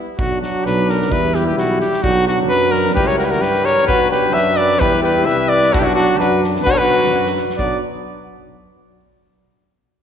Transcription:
0.19 0.46 B1 medium
0.19 1.13 F#3 medium
0.19 1.12 D4 medium
0.19 0.41 F#4 medium
0.19 kick medium
0.41 0.67 F#4 medium
0.41 snare soft
0.65 1.14 B1 loud
0.65 0.91 B4 loud
0.65 snare soft
0.89 1.13 A#4 loud
0.89 snare soft
1.02 snare soft
1.11 1.60 E2 loud
1.11 2.05 G3 medium
1.11 2.04 E4 medium
1.11 1.36 B4 loud
1.11 kick medium
1.34 1.46 G4 medium
1.34 snare soft
1.47 1.57 G4 medium
1.58 1.84 B1 loud
1.58 1.80 F#4 medium
1.58 snare soft
1.81 2.04 G4 medium
1.81 snare soft
1.93 snare soft
2.03 2.51 B1 loud
2.03 2.98 F#3 loud
2.03 3.00 D4 medium
2.03 2.27 F#4 loud
2.03 kick medium
2.27 2.38 F#4 medium
2.27 snare soft
2.49 2.98 F#2 loud
2.49 2.73 B4 loud
2.49 snare soft
2.71 2.94 A#4 loud
2.71 snare soft
2.86 snare soft
2.95 3.44 C#2 medium
2.95 3.91 G3 medium
2.95 3.72 E4 medium
2.95 3.09 G4 loud
2.95 3.08 B4 loud
2.95 kick medium
3.07 3.18 A#4 medium
3.07 3.18 C#5 loud
3.07 snare soft
3.18 3.27 F#4 medium
3.18 3.26 A#4 medium
3.18 snare soft
3.24 3.32 G4 medium
3.24 3.32 B4 medium
3.30 3.43 F#4 medium
3.30 3.43 A#4 medium
3.30 snare soft
3.41 3.92 G2 medium
3.41 3.66 G4 medium
3.41 3.67 B4 loud
3.41 snare soft
3.54 snare soft
3.65 3.87 A#4 medium
3.65 3.86 C#5 loud
3.65 snare soft
3.78 snare soft
3.87 4.37 B1 medium
3.87 4.82 F#3 medium
3.87 4.84 D4 medium
3.87 4.11 F#4 loud
3.87 4.10 B4 loud
3.87 kick medium
4.11 4.35 G4 medium
4.11 4.35 B4 loud
4.11 snare soft
4.33 4.83 F#2 medium
4.33 4.58 B4 medium
4.33 4.58 E5 loud
4.33 snare soft
4.57 4.84 B4 loud
4.57 4.81 D5 loud
4.57 snare soft
4.71 snare soft
4.79 5.29 E2 loud
4.79 5.74 G3 loud
4.79 5.74 E4 loud
4.79 5.02 G4 medium
4.79 5.02 B4 loud
4.79 kick loud
5.03 5.29 G4 medium
5.03 5.27 B4 loud
5.03 snare soft
5.25 5.76 C2 loud
5.25 5.50 B4 medium
5.25 5.50 E5 loud
5.25 snare soft
5.49 5.75 B4 loud
5.49 5.75 D5 loud
5.64 snare soft
5.73 6.22 B1 medium
5.73 6.62 F#3 loud
5.73 5.83 D4 loud
5.73 6.62 D4 medium
5.73 5.80 F#4 loud
5.73 kick loud
5.79 5.86 E4 loud
5.79 5.85 G4 medium
5.84 5.95 D4 medium
5.84 5.94 F#4 loud
5.95 6.23 D4 medium
5.95 6.20 F#4 loud
5.95 snare soft
6.18 6.68 F#2 medium
6.18 6.44 F#4 medium
6.18 6.42 B4 loud
6.18 snare soft
6.44 snare soft
6.56 snare soft
6.63 7.14 B1 loud
6.63 6.76 F#4 loud
6.63 6.72 B4 loud
6.63 kick medium
6.67 7.39 F#3 medium
6.67 7.39 D4 medium
6.67 6.79 C#5 loud
6.75 6.81 A#4 medium
6.75 7.34 B4 loud
6.79 7.35 F#4 loud
6.79 snare soft
6.91 snare soft
7.04 snare soft
7.12 7.37 F#2 medium
7.12 snare soft
7.26 snare soft
7.37 snare soft
7.50 snare soft
7.57 7.79 B1 medium
7.57 7.80 F#3 medium
7.57 7.79 B3 medium
7.57 7.79 D4 medium
7.57 7.79 D5 medium
7.57 kick medium

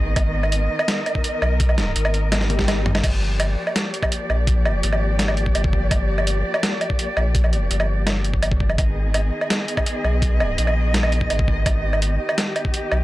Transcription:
0.00 0.15 G#1 loud
0.00 3.00 D#3 medium
0.00 3.00 B3 medium
0.00 0.14 G#4 medium
0.00 3.00 D#5 medium
0.16 0.69 G#1 loud
0.16 3.01 A#4 medium
0.16 kick loud
0.16 closed hi-hat medium
0.16 low woodblock medium
0.43 low woodblock medium
0.52 closed hi-hat medium
0.79 low woodblock medium
0.88 snare loud
0.88 closed hi-hat medium
1.06 closed hi-hat soft
1.06 low woodblock medium
1.15 kick medium
1.24 closed hi-hat medium
1.42 1.94 B1 loud
1.42 low woodblock medium
1.60 kick loud
1.60 closed hi-hat medium
1.69 low woodblock medium
1.78 snare medium
1.78 closed hi-hat soft
1.96 3.02 G#1 loud
1.96 closed hi-hat medium
2.05 low woodblock medium
2.14 closed hi-hat soft
2.32 snare loud
2.32 closed hi-hat medium
2.32 high tom medium
2.32 swell medium
2.32 low woodblock medium
2.41 snare medium
2.50 closed hi-hat soft
2.50 high tom medium
2.59 kick medium
2.59 snare medium
2.68 snare medium
2.68 closed hi-hat medium
2.68 low woodblock medium
2.86 mid tom loud
2.95 snare medium
2.95 low woodblock medium
3.04 3.56 G1 loud
3.04 8.74 F3 medium
3.04 8.75 A#3 medium
3.04 8.75 G4 medium
3.04 8.75 D5 medium
3.04 kick loud
3.04 closed hi-hat medium
3.04 crash medium
3.04 low woodblock medium
3.40 closed hi-hat medium
3.40 low woodblock medium
3.67 low woodblock medium
3.76 snare loud
3.76 closed hi-hat medium
3.94 closed hi-hat soft
4.03 kick medium
4.03 low woodblock medium
4.12 closed hi-hat medium
4.29 4.82 A#1 loud
4.29 low woodblock medium
4.47 kick loud
4.47 closed hi-hat medium
4.65 low woodblock medium
4.83 5.54 G#1 medium
4.83 closed hi-hat medium
4.93 low woodblock medium
5.19 snare loud
5.19 closed hi-hat medium
5.28 low woodblock medium
5.37 closed hi-hat soft
5.46 kick medium
5.55 5.90 G1 loud
5.55 closed hi-hat medium
5.55 low woodblock medium
5.64 kick loud
5.73 kick medium
5.91 6.44 G1 loud
5.91 kick loud
5.91 closed hi-hat medium
5.91 low woodblock medium
6.18 low woodblock medium
6.27 closed hi-hat medium
6.54 low woodblock medium
6.63 snare loud
6.63 closed hi-hat medium
6.81 closed hi-hat soft
6.81 low woodblock medium
6.90 kick medium
6.99 closed hi-hat medium
7.17 7.69 A#1 loud
7.17 low woodblock medium
7.35 kick loud
7.35 closed hi-hat medium
7.44 low woodblock medium
7.53 closed hi-hat soft
7.71 8.77 G1 loud
7.71 closed hi-hat medium
7.80 low woodblock medium
8.07 snare loud
8.07 closed hi-hat medium
8.07 low woodblock soft
8.25 closed hi-hat soft
8.34 kick medium
8.43 closed hi-hat medium
8.43 low woodblock medium
8.52 kick loud
8.60 kick medium
8.70 low woodblock medium
8.78 9.31 G#1 loud
8.78 13.04 D#3 medium
8.78 13.04 B3 medium
8.78 11.63 G#4 medium
8.78 13.04 D#5 medium
8.78 kick loud
8.78 closed hi-hat medium
8.78 low woodblock soft
9.14 closed hi-hat medium
9.14 low woodblock medium
9.41 low woodblock medium
9.50 snare loud
9.50 closed hi-hat medium
9.68 closed hi-hat soft
9.77 kick medium
9.77 low woodblock medium
9.86 closed hi-hat medium
10.04 10.57 B1 loud
10.04 low woodblock medium
10.22 kick loud
10.22 closed hi-hat medium
10.40 low woodblock medium
10.58 11.29 A#1 loud
10.58 closed hi-hat medium
10.67 low woodblock medium
10.94 snare loud
10.94 closed hi-hat medium
11.03 low woodblock medium
11.12 closed hi-hat soft
11.21 kick medium
11.30 11.64 G#1 loud
11.30 closed hi-hat medium
11.30 low woodblock medium
11.39 kick loud
11.48 kick medium
11.66 12.18 G#1 loud
11.66 13.04 G4 medium
11.66 kick loud
11.66 closed hi-hat medium
11.66 low woodblock medium
11.93 low woodblock medium
12.02 closed hi-hat medium
12.29 low woodblock medium
12.38 snare loud
12.38 closed hi-hat medium
12.56 closed hi-hat soft
12.56 low woodblock medium
12.65 kick medium
12.74 closed hi-hat medium
12.92 13.04 B1 loud
12.92 low woodblock medium

